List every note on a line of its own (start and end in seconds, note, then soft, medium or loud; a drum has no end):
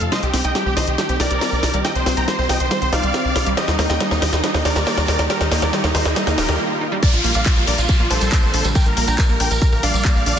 0.00 0.10 F2 medium
0.00 0.09 C3 medium
0.00 0.09 F3 medium
0.00 0.09 A3 medium
0.00 0.09 F4 medium
0.00 0.06 A4 medium
0.00 closed hi-hat medium
0.00 riser medium
0.12 0.27 D#3 medium
0.12 0.27 G3 medium
0.12 0.15 G3 medium
0.12 0.27 C4 medium
0.12 0.27 G4 medium
0.12 0.20 C5 medium
0.12 0.19 D#5 loud
0.12 0.20 D#5 loud
0.12 snare medium
0.12 closed hi-hat medium
0.23 0.32 C2 medium
0.23 0.30 G4 medium
0.23 closed hi-hat soft
0.33 0.43 C2 loud
0.33 0.41 D#3 medium
0.33 0.41 G3 medium
0.33 0.41 C4 medium
0.33 0.41 C4 loud
0.33 0.41 G4 medium
0.33 snare medium
0.33 open hi-hat loud
0.44 0.53 C2 medium
0.44 0.59 D#3 medium
0.44 0.59 G3 medium
0.44 0.59 C4 medium
0.44 0.47 D#4 medium
0.44 0.59 G4 medium
0.44 0.52 D#5 medium
0.44 0.52 G5 medium
0.44 closed hi-hat soft
0.55 0.63 G3 medium
0.55 0.63 G4 medium
0.55 snare medium
0.55 closed hi-hat medium
0.66 0.75 C2 medium
0.66 0.81 D#3 medium
0.66 0.81 G3 medium
0.66 0.81 C4 medium
0.66 0.69 C4 medium
0.66 0.81 G4 medium
0.66 0.73 G4 medium
0.77 0.86 C2 medium
0.77 0.82 D#4 medium
0.77 0.84 C5 medium
0.77 0.84 D#5 medium
0.77 snare medium
0.77 open hi-hat loud
0.87 0.97 C2 medium
0.87 0.95 G4 medium
0.87 closed hi-hat soft
0.98 1.13 D#3 medium
0.98 1.13 G3 medium
0.98 1.01 G3 medium
0.98 1.13 C4 medium
0.98 1.13 G4 medium
0.98 1.06 G4 medium
0.98 snare medium
0.98 closed hi-hat medium
1.09 1.18 C2 medium
1.09 1.14 C4 medium
1.09 1.17 G4 medium
1.09 closed hi-hat soft
1.20 1.29 C2 loud
1.20 1.35 D#3 medium
1.20 1.35 G3 medium
1.20 1.35 C4 medium
1.20 1.28 D#4 loud
1.20 1.35 G4 medium
1.20 1.76 A#4 medium
1.20 1.76 D5 loud
1.20 1.76 D5 medium
1.20 snare medium
1.20 open hi-hat loud
1.31 1.40 C2 medium
1.31 1.34 G3 medium
1.31 closed hi-hat soft
1.41 1.49 D#3 medium
1.41 1.49 G3 medium
1.41 1.49 C4 medium
1.41 1.47 C4 medium
1.41 1.49 G4 medium
1.41 snare medium
1.41 open hi-hat medium
1.52 1.61 C2 medium
1.52 1.60 D#3 medium
1.52 1.60 G3 medium
1.52 1.60 C4 medium
1.52 1.60 G4 medium
1.63 1.72 C2 loud
1.63 1.71 D#3 medium
1.63 1.71 G3 medium
1.63 1.71 C4 medium
1.63 1.66 D#4 medium
1.63 1.71 G4 medium
1.63 snare medium
1.63 open hi-hat loud
1.74 1.83 C2 medium
1.74 1.81 D#3 medium
1.74 1.81 G3 medium
1.74 1.79 G3 loud
1.74 1.81 C4 medium
1.74 1.81 G4 medium
1.74 closed hi-hat soft
1.85 2.00 D#3 medium
1.85 2.00 G3 medium
1.85 1.88 G3 medium
1.85 2.00 C4 medium
1.85 2.00 G4 medium
1.85 1.92 D#5 medium
1.85 1.92 G5 loud
1.85 1.92 G5 medium
1.85 snare medium
1.85 closed hi-hat medium
1.95 2.05 C2 medium
1.95 2.03 C5 medium
1.95 closed hi-hat soft
2.06 2.15 C2 medium
2.06 2.14 D#3 medium
2.06 2.14 G3 medium
2.06 2.14 C4 medium
2.06 2.14 C4 loud
2.06 2.14 G4 medium
2.06 2.14 C5 medium
2.06 snare medium
2.06 open hi-hat loud
2.17 2.26 C2 medium
2.17 2.32 D#3 medium
2.17 2.32 G3 medium
2.17 2.32 C4 medium
2.17 2.20 D#4 medium
2.17 2.32 G4 medium
2.17 2.24 G5 medium
2.17 2.24 A#5 medium
2.17 2.25 A#5 medium
2.17 closed hi-hat medium
2.28 2.35 G3 medium
2.28 2.35 C5 medium
2.28 snare medium
2.28 closed hi-hat medium
2.38 2.48 C2 medium
2.38 2.54 D#3 medium
2.38 2.54 G3 medium
2.38 2.54 C4 medium
2.38 2.42 C4 medium
2.38 2.54 G4 medium
2.38 2.46 C5 medium
2.49 2.59 C2 medium
2.49 2.54 D#4 medium
2.49 2.57 D#5 medium
2.49 2.57 G5 medium
2.49 snare medium
2.49 open hi-hat loud
2.60 2.69 C2 medium
2.60 2.68 C5 medium
2.60 closed hi-hat medium
2.71 2.86 D#3 medium
2.71 2.86 G3 medium
2.71 2.74 G3 medium
2.71 2.86 C4 medium
2.71 2.86 G4 medium
2.71 2.78 C5 medium
2.71 snare medium
2.71 closed hi-hat medium
2.82 2.91 C2 medium
2.82 2.87 C4 medium
2.82 2.89 C5 medium
2.82 closed hi-hat soft
2.92 3.02 C2 medium
2.92 3.08 D#3 medium
2.92 3.08 G3 medium
2.92 3.08 C4 medium
2.92 3.00 D#4 loud
2.92 3.08 G4 medium
2.92 3.49 D5 medium
2.92 3.49 F5 loud
2.92 3.49 F5 medium
2.92 snare medium
2.92 open hi-hat loud
3.03 3.12 C2 medium
3.03 3.06 G3 medium
3.03 closed hi-hat soft
3.14 3.22 D#3 medium
3.14 3.22 G3 medium
3.14 3.22 C4 medium
3.14 3.19 C4 medium
3.14 3.22 G4 medium
3.14 snare medium
3.14 closed hi-hat medium
3.25 3.34 C2 medium
3.25 3.32 D#3 medium
3.25 3.32 G3 medium
3.25 3.32 C4 medium
3.25 3.32 G4 medium
3.36 3.45 C2 loud
3.36 3.43 D#3 medium
3.36 3.43 G3 medium
3.36 3.43 C4 medium
3.36 3.39 D#4 medium
3.36 3.43 G4 medium
3.36 snare medium
3.36 open hi-hat loud
3.46 3.56 C2 medium
3.46 3.54 D#3 medium
3.46 3.54 G3 medium
3.46 3.52 G3 loud
3.46 3.54 C4 medium
3.46 3.54 G4 medium
3.46 closed hi-hat medium
3.57 3.72 D#3 medium
3.57 3.72 G3 medium
3.57 3.60 G3 medium
3.57 3.72 A#3 medium
3.57 3.72 G4 medium
3.57 3.65 G4 medium
3.57 3.65 D#5 loud
3.57 snare medium
3.57 closed hi-hat medium
3.68 3.77 D#2 medium
3.68 3.76 D#4 medium
3.68 snare medium
3.68 closed hi-hat soft
3.79 3.88 D#2 medium
3.79 3.86 D#3 medium
3.79 3.86 G3 medium
3.79 3.86 A#3 medium
3.79 3.86 A#3 loud
3.79 3.86 D#4 medium
3.79 3.86 G4 medium
3.79 snare medium
3.79 open hi-hat medium
3.90 3.99 D#2 medium
3.90 4.05 D#3 medium
3.90 4.05 G3 medium
3.90 4.05 A#3 medium
3.90 3.93 D#4 medium
3.90 4.05 G4 medium
3.90 3.97 D#5 medium
3.90 3.97 G5 medium
3.90 snare medium
3.90 closed hi-hat medium
4.00 4.08 G3 medium
4.00 4.08 D#4 medium
4.00 snare loud
4.00 closed hi-hat medium
4.11 4.20 D#2 medium
4.11 4.26 D#3 medium
4.11 4.26 G3 medium
4.11 4.14 A#3 medium
4.11 4.26 A#3 medium
4.11 4.19 D#4 medium
4.11 4.26 G4 medium
4.11 snare medium
4.22 4.31 D#2 medium
4.22 4.27 D#4 medium
4.22 4.29 G4 medium
4.22 4.29 D#5 medium
4.22 snare loud
4.22 open hi-hat loud
4.33 4.42 D#2 medium
4.33 4.40 D#4 medium
4.33 snare medium
4.33 closed hi-hat medium
4.43 4.59 D#3 medium
4.43 4.59 G3 medium
4.43 4.47 G3 medium
4.43 4.59 A#3 medium
4.43 4.51 D#4 medium
4.43 4.59 G4 medium
4.43 snare loud
4.43 closed hi-hat medium
4.54 4.64 D#2 medium
4.54 4.59 A#3 medium
4.54 4.62 D#4 medium
4.54 snare medium
4.54 closed hi-hat soft
4.65 4.74 D#2 loud
4.65 4.80 D#3 medium
4.65 4.80 G3 medium
4.65 4.80 A#3 medium
4.65 4.73 D#4 loud
4.65 4.80 G4 medium
4.65 5.21 A#4 medium
4.65 5.21 D5 loud
4.65 5.21 D5 medium
4.65 snare loud
4.65 open hi-hat loud
4.76 4.85 D#2 medium
4.76 4.79 G3 medium
4.76 snare medium
4.76 closed hi-hat medium
4.87 4.94 D#3 medium
4.87 4.94 G3 medium
4.87 4.92 A#3 medium
4.87 4.94 A#3 medium
4.87 4.94 G4 medium
4.87 snare loud
4.87 open hi-hat medium
4.97 5.07 D#2 medium
4.97 5.05 D#3 medium
4.97 5.05 G3 medium
4.97 5.05 A#3 medium
4.97 5.05 G4 medium
4.97 snare medium
5.08 5.17 D#2 loud
5.08 5.16 D#3 medium
5.08 5.16 G3 medium
5.08 5.16 A#3 medium
5.08 5.11 D#4 medium
5.08 5.16 G4 medium
5.08 snare loud
5.08 open hi-hat loud
5.19 5.28 D#2 medium
5.19 5.27 D#3 medium
5.19 5.27 G3 medium
5.19 5.24 G3 loud
5.19 5.27 A#3 medium
5.19 5.27 G4 medium
5.19 snare medium
5.19 closed hi-hat medium
5.30 5.45 D#3 medium
5.30 5.45 G3 medium
5.30 5.33 G3 medium
5.30 5.45 A#3 medium
5.30 5.45 G4 medium
5.30 5.37 G4 medium
5.30 5.37 A#4 loud
5.30 snare loud
5.30 closed hi-hat medium
5.41 5.50 D#2 medium
5.41 5.48 D#4 medium
5.41 snare medium
5.41 closed hi-hat soft
5.51 5.61 D#2 loud
5.51 5.59 D#3 medium
5.51 5.59 G3 medium
5.51 5.59 A#3 medium
5.51 5.59 A#3 loud
5.51 5.59 D#4 medium
5.51 5.59 G4 medium
5.51 snare loud
5.51 open hi-hat loud
5.62 5.71 D#2 medium
5.62 5.77 D#3 medium
5.62 5.77 G3 medium
5.62 5.77 A#3 medium
5.62 5.65 D#4 medium
5.62 5.77 G4 medium
5.62 5.70 A#4 medium
5.62 5.70 D5 medium
5.62 snare medium
5.62 closed hi-hat medium
5.73 5.81 G3 medium
5.73 5.81 D#4 medium
5.73 snare loud
5.73 closed hi-hat medium
5.84 5.93 D#2 medium
5.84 5.99 D#3 medium
5.84 5.99 G3 medium
5.84 5.99 A#3 medium
5.84 5.87 A#3 medium
5.84 5.91 D#4 medium
5.84 5.99 G4 medium
5.84 snare medium
5.84 closed hi-hat soft
5.95 6.04 D#2 loud
5.95 6.00 D#4 medium
5.95 6.02 D#4 medium
5.95 6.02 C5 medium
5.95 snare loud
5.95 open hi-hat loud
6.05 6.15 D#2 loud
6.05 6.13 D#4 medium
6.05 snare loud
6.05 closed hi-hat medium
6.16 6.31 D#3 medium
6.16 6.31 G3 medium
6.16 6.19 G3 medium
6.16 6.31 A#3 medium
6.16 6.24 D#4 medium
6.16 6.31 G4 medium
6.16 snare loud
6.16 closed hi-hat medium
6.27 6.36 D#2 medium
6.27 6.32 A#3 medium
6.27 6.35 D#4 medium
6.27 snare medium
6.27 closed hi-hat soft
6.38 6.47 D#1 loud
6.38 6.53 D#3 medium
6.38 6.53 G3 medium
6.38 6.53 A#3 medium
6.38 6.46 D#4 loud
6.38 6.53 G4 medium
6.38 6.59 G4 medium
6.38 6.59 A#4 medium
6.38 6.59 A#4 loud
6.38 snare loud
6.38 open hi-hat loud
6.49 6.58 D#2 medium
6.49 6.52 G3 medium
6.49 snare medium
6.49 closed hi-hat medium
6.59 6.65 A#3 medium
6.81 6.84 D#4 medium
6.92 6.97 G3 loud
7.03 7.18 D3 medium
7.03 7.18 G3 medium
7.03 7.06 G3 medium
7.03 7.18 A#3 medium
7.03 7.18 F4 medium
7.03 7.10 A#4 medium
7.03 7.10 D5 loud
7.03 kick loud
7.03 closed hi-hat medium
7.03 crash loud
7.03 tambourine medium
7.03 downlifter medium
7.13 7.22 A#1 medium
7.13 7.21 F4 medium
7.13 closed hi-hat soft
7.13 tambourine soft
7.24 7.33 A#1 loud
7.24 7.32 D3 medium
7.24 7.32 G3 medium
7.24 7.32 A#3 medium
7.24 7.32 A#3 loud
7.24 7.32 F4 medium
7.24 open hi-hat loud
7.34 7.44 A#1 medium
7.34 7.50 D3 medium
7.34 7.50 G3 medium
7.34 7.50 A#3 medium
7.34 7.38 D4 medium
7.34 7.50 F4 medium
7.34 7.42 D5 medium
7.34 7.42 F5 medium
7.34 7.43 F5 medium
7.34 closed hi-hat medium
7.34 tambourine medium
7.46 7.53 G3 medium
7.46 7.53 F4 medium
7.46 kick loud
7.46 clap loud
7.46 closed hi-hat medium
7.46 tambourine medium
7.57 7.66 A#1 medium
7.57 7.72 D3 medium
7.57 7.72 G3 medium
7.57 7.60 A#3 medium
7.57 7.72 A#3 medium
7.57 7.64 F4 medium
7.57 7.72 F4 medium
7.57 tambourine soft
7.67 7.76 A#1 medium
7.67 7.72 D4 medium
7.67 7.75 A#4 medium
7.67 7.75 D5 medium
7.67 open hi-hat loud
7.78 7.87 A#1 loud
7.78 7.86 F4 medium
7.78 closed hi-hat medium
7.78 tambourine medium
7.89 8.04 D3 medium
7.89 7.92 G3 medium
7.89 8.04 G3 medium
7.89 8.04 A#3 medium
7.89 7.96 F4 medium
7.89 8.04 F4 medium
7.89 kick loud
7.89 closed hi-hat medium
7.89 tambourine medium
8.00 8.09 A#1 medium
8.00 8.05 A#3 medium
8.00 8.07 F4 medium
8.00 tambourine soft
8.10 8.20 A#1 loud
8.10 8.26 D3 medium
8.10 8.26 G3 medium
8.10 8.26 A#3 medium
8.10 8.18 D4 loud
8.10 8.26 F4 medium
8.10 8.67 A4 medium
8.10 8.67 C5 medium
8.10 8.67 C5 loud
8.10 open hi-hat loud
8.21 8.30 A#1 medium
8.21 8.24 G3 medium
8.21 closed hi-hat medium
8.21 tambourine medium
8.32 8.40 D3 medium
8.32 8.40 G3 medium
8.32 8.40 A#3 medium
8.32 8.37 A#3 medium
8.32 8.40 F4 medium
8.32 kick loud
8.32 clap loud
8.32 open hi-hat medium
8.32 tambourine medium
8.43 8.52 A#1 medium
8.43 8.50 D3 medium
8.43 8.50 G3 medium
8.43 8.50 A#3 medium
8.43 8.50 F4 medium
8.43 tambourine soft
8.54 8.63 A#1 loud
8.54 8.61 D3 medium
8.54 8.61 G3 medium
8.54 8.61 A#3 medium
8.54 8.57 D4 medium
8.54 8.61 F4 medium
8.54 open hi-hat loud
8.64 8.74 A#1 medium
8.64 8.72 D3 medium
8.64 8.72 G3 medium
8.64 8.70 G3 loud
8.64 8.72 A#3 medium
8.64 8.72 F4 medium
8.64 closed hi-hat medium
8.64 tambourine medium
8.75 8.90 D3 medium
8.75 8.90 G3 medium
8.75 8.78 G3 medium
8.75 8.90 A#3 medium
8.75 8.90 F4 medium
8.75 8.83 A#4 medium
8.75 8.83 G5 loud
8.75 kick loud
8.75 closed hi-hat medium
8.75 tambourine medium
8.86 8.95 A#1 medium
8.86 8.94 A#4 medium
8.86 closed hi-hat soft
8.86 tambourine soft
8.97 9.06 A#1 loud
8.97 9.04 D3 medium
8.97 9.04 G3 medium
8.97 9.04 A#3 medium
8.97 9.05 A#3 loud
8.97 9.04 F4 medium
8.97 9.04 A#4 medium
8.97 open hi-hat loud
9.07 9.17 A#1 medium
9.07 9.23 D3 medium
9.07 9.23 G3 medium
9.07 9.23 A#3 medium
9.07 9.11 D4 medium
9.07 9.23 F4 medium
9.07 9.15 G5 medium
9.07 9.15 A#5 medium
9.07 9.15 A#5 loud
9.07 closed hi-hat medium
9.07 tambourine medium
9.18 9.26 G3 medium
9.18 9.26 A#4 medium
9.18 kick loud
9.18 clap loud
9.18 closed hi-hat medium
9.18 tambourine medium
9.29 9.38 A#1 medium
9.29 9.44 D3 medium
9.29 9.44 G3 medium
9.29 9.44 A#3 medium
9.29 9.32 A#3 medium
9.29 9.44 F4 medium
9.29 9.37 A#4 medium
9.29 tambourine soft
9.40 9.49 A#1 loud
9.40 9.45 D4 medium
9.40 9.48 A#4 medium
9.40 9.48 G5 medium
9.40 open hi-hat loud
9.51 9.60 A#1 medium
9.51 9.58 A#4 medium
9.51 closed hi-hat medium
9.51 tambourine medium
9.62 9.77 D3 loud
9.62 9.77 G3 medium
9.62 9.65 G3 medium
9.62 9.77 A#3 medium
9.62 9.77 F4 loud
9.62 9.69 A#4 medium
9.62 kick loud
9.62 closed hi-hat medium
9.62 tambourine medium
9.72 9.81 A#1 medium
9.72 9.78 A#3 medium
9.72 9.80 A#4 medium
9.72 tambourine soft
9.83 9.92 A#1 loud
9.83 9.98 D3 medium
9.83 9.98 G3 medium
9.83 9.98 A#3 medium
9.83 9.91 D4 loud
9.83 9.98 F4 medium
9.83 10.39 D5 medium
9.83 10.39 F5 medium
9.83 10.39 F5 loud
9.83 open hi-hat loud
9.94 10.03 A#1 medium
9.94 9.97 G3 medium
9.94 closed hi-hat medium
9.94 tambourine medium
10.05 10.12 D3 medium
10.05 10.12 G3 medium
10.05 10.12 A#3 medium
10.05 10.10 A#3 medium
10.05 10.12 F4 medium
10.05 kick loud
10.05 cross-stick medium
10.05 clap loud
10.05 closed hi-hat medium
10.15 10.25 A#1 medium
10.15 10.23 D3 medium
10.15 10.23 G3 medium
10.15 10.23 A#3 medium
10.15 10.23 F4 medium
10.15 tambourine soft
10.26 10.35 A#1 loud
10.26 10.34 D3 medium
10.26 10.34 G3 medium
10.26 10.34 A#3 medium
10.26 10.29 D4 medium
10.26 10.34 F4 medium
10.26 open hi-hat loud